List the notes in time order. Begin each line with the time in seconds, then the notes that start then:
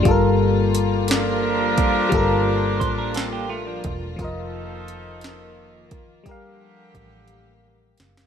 Already playing: F4
0.03 G1 G3 A#3 F4, kick, closed hi-hat
0.08 A4 A#4
0.75 closed hi-hat
1.08 F3 D4 A#4, snare, closed hi-hat
1.78 kick, closed hi-hat
2.09 G1 G3 F4, kick, closed hi-hat
2.14 A4 A#4
2.80 A1 C5, kick, closed hi-hat
2.98 D4 A#4
3.14 C4 A4, snare, closed hi-hat
3.32 A#3 G4
3.49 A3 F4
3.67 F3 D4
3.84 E1, kick, closed hi-hat
4.16 F1 D#3 F3 A#3 D#4 F4 A4, kick, closed hi-hat
4.22 A#4 D#5
4.88 closed hi-hat
5.21 snare, closed hi-hat
5.91 kick, closed hi-hat
6.24 G1 D3 F3 G3 A#3 G4, kick, closed hi-hat
6.29 A#4 F5
6.95 A1, kick, closed hi-hat
7.28 closed hi-hat
7.98 F#1, snare, closed hi-hat
8.17 snare